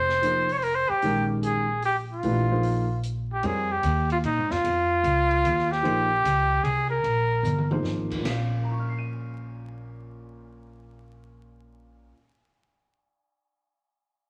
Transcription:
Already playing: upright bass F1, trumpet C5
0.09 snare
0.22 upright piano F3 A#3 D#4 G#4 C5, closed hi-hat
0.49 trumpet C#5, open hi-hat
0.58 trumpet C5
0.62 trumpet A#4, open hi-hat
0.75 trumpet C5
0.90 trumpet G4, muted upright bass stroke
1.02 upright bass A#1, upright piano D#3 G#3 C#4 G4 A#4, open hi-hat
1.43 trumpet G#4, closed hi-hat
1.82 trumpet G4, open hi-hat
2.12 trumpet F4
2.23 upright bass A#1, upright piano E3 A3 D4 G4 B4, open hi-hat
2.50 upright piano F3 A#3 D#4 G#4 C5
2.63 open hi-hat
3.03 closed hi-hat
3.33 trumpet G4
3.43 upright bass F2, upright piano G3 C4 F4 A#4 C#5, trumpet G#4, ride
3.72 trumpet G4
3.83 upright bass D#2, hi-hat pedal, ride
4.10 trumpet F4, ride
4.24 upright bass A#2, trumpet D#4, ride
4.38 upright bass G#2
4.50 upright bass F2, trumpet F4, snare
4.64 upright bass F2, ride
5.04 upright bass C#2, hi-hat pedal, ride
5.31 ride
5.44 upright bass D#2, hi-hat pedal, ride
5.58 snare
5.71 trumpet G4, snare
5.82 upright bass A#1, upright piano F3 A#3 D#4 G#4 C5, ride
6.24 upright bass C#2, hi-hat pedal, ride
6.63 upright bass C2, trumpet G#4, ride
6.90 trumpet A#4
7.04 upright bass A#1, ride
7.43 upright bass G1, hi-hat pedal, mid tom
7.58 mid tom
7.70 upright piano F3 A#3 D#4 G#4 C5, mid tom
7.83 upright bass G#1, snare
8.11 kick, crash
8.17 upright piano A#2 A#3
8.23 upright bass A#1, upright piano C#4 F4, snare, ride bell
8.29 upright piano F5
8.64 upright piano A#5
8.71 upright piano C#6
8.79 upright piano F6
8.88 upright piano C7
8.99 upright piano D#7

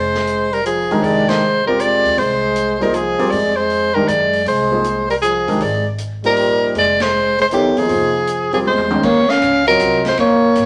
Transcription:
Already playing: upright bass F1, trombone G#3, soprano saxophone C5
0.14 snare
0.27 closed hi-hat
0.52 trombone G3, soprano saxophone A#4, open hi-hat
0.65 trombone F3, soprano saxophone G#4, closed hi-hat
0.91 grand piano D#3 G#3 D4 G4 A#4, open hi-hat
1.02 upright bass F1, trombone G#3, soprano saxophone D5, open hi-hat
1.28 trombone G#3, soprano saxophone C5, snare, ride
1.66 trombone G3, grand piano C4 F4 G4 A#4 D5, soprano saxophone A#4
1.79 trombone G#3, soprano saxophone D5, closed hi-hat
2.05 upright bass D#2, open hi-hat
2.17 upright bass C2, trombone G#3, soprano saxophone C5, open hi-hat
2.56 closed hi-hat
2.80 grand piano F3 A#3 D#4 G#4 C5, trombone G3, soprano saxophone A#4, open hi-hat
2.93 trombone F3, soprano saxophone G#4, closed hi-hat
3.18 grand piano G3 C4 F4 A#4 D5, muted upright bass stroke, open hi-hat
3.31 upright bass F2, trombone G#3, soprano saxophone D5, open hi-hat
3.56 trombone G#3, soprano saxophone C5
3.70 open hi-hat
3.94 grand piano D#3 G#3 D4 G4 A#4, trombone G3, soprano saxophone A#4
4.07 upright bass F#2, trombone G#3, soprano saxophone D5, closed hi-hat
4.33 open hi-hat
4.46 upright bass C2, trombone G#3, soprano saxophone C5, open hi-hat
4.71 grand piano F3 A#3 D#4 G#4 C5
4.84 closed hi-hat
5.09 trombone G3, soprano saxophone A#4, open hi-hat
5.22 trombone F3, soprano saxophone G#4, closed hi-hat
5.48 grand piano D#3 G#3 D4 G4 A#4, kick, open hi-hat
5.60 upright bass G#1, trombone G#3, soprano saxophone D5, open hi-hat
5.98 closed hi-hat
6.24 grand piano F3 A#3 D#4 G4 C5, trombone G3, soprano saxophone A#4, open hi-hat
6.37 open hi-hat
6.75 upright bass F1, trombone G#3, soprano saxophone D5, open hi-hat
7.00 trombone G#3, soprano saxophone C5, snare, ride
7.38 trombone G#3, soprano saxophone C5, open hi-hat
7.51 trombone D#3, grand piano F#3 B3 E4 A4 C#5, soprano saxophone G4, closed hi-hat
7.76 grand piano F3 A#3 D#4 G#4 C5, trombone F3, soprano saxophone G#4, muted upright bass stroke, open hi-hat
7.89 upright bass F1, open hi-hat
8.27 closed hi-hat
8.52 trombone F3, grand piano G3 C4 F4 A#4 D5, soprano saxophone G#4, open hi-hat
8.65 upright bass E2, trombone G#3, soprano saxophone C5, high tom
8.78 mid tom
8.90 grand piano D#3 G#3 C#4 F#4 C5, mid tom
9.02 upright bass D#2, trombone A#3, soprano saxophone C#5, kick, crash
9.28 trombone C#4, soprano saxophone F5, muted upright bass stroke, snare
9.42 upright bass C#2, hi-hat pedal, ride
9.66 grand piano F#3 C4 F4 A#4 D#5, trombone F#3, soprano saxophone A#4, ride
9.80 upright bass C2, hi-hat pedal, ride
10.05 trombone G#3, soprano saxophone C5, snare, ride
10.17 upright bass A#1, trombone A#3, soprano saxophone C#5, ride
10.55 upright bass G#1, hi-hat pedal, ride

